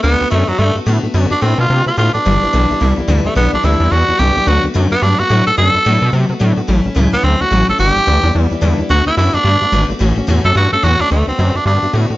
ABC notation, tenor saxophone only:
X:1
M:4/4
L:1/8
Q:"Swing" 1/4=217
K:D
V:1 name="Tenor saxophone"
B,2 A, F, A, z3 | z D =C =F2 F F D- | D4- D z2 A, | B, D E2 F2 G2 |
F z2 B, D F2 A | A4 z4 | z3 B, =C F2 A | G4 z4 |
F E E D4 z | z3 A F A F D | A, =C2 D D2 z2 |]